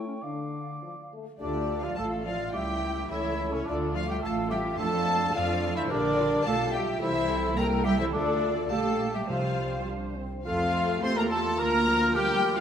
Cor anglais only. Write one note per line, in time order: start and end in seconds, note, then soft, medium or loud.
0.00 0.24 C#5 soft
0.22 1.12 D5 soft
1.41 1.85 D4 medium
1.84 1.97 F4 medium
1.98 2.11 A4 medium
2.25 2.53 F4 medium
2.53 3.09 G4 medium
3.11 3.54 E4 medium
3.53 3.68 C#4 medium
3.66 3.97 D4 medium
3.95 4.09 F4 medium
4.08 4.21 G4 medium
4.22 4.49 A4 medium
4.50 4.78 G4 medium
4.79 5.34 A4 loud
5.35 5.77 F4 medium
5.75 5.90 E4 medium
5.90 6.45 D4 medium
6.48 6.60 A4 medium
6.75 6.87 G4 medium
7.02 7.59 E4 medium
7.57 7.84 A#4 medium
7.85 7.91 G4 medium
7.99 8.12 E4 medium
8.13 8.49 D4 medium
8.70 9.16 A4 medium
9.14 9.29 G4 medium
9.30 9.87 F4 medium
10.46 11.04 F4 medium
11.03 11.18 C5 medium
11.17 11.30 A#4 medium
11.30 11.43 A4 medium
11.58 12.16 A#4 medium
12.15 12.56 G4 loud
12.57 12.60 F4 medium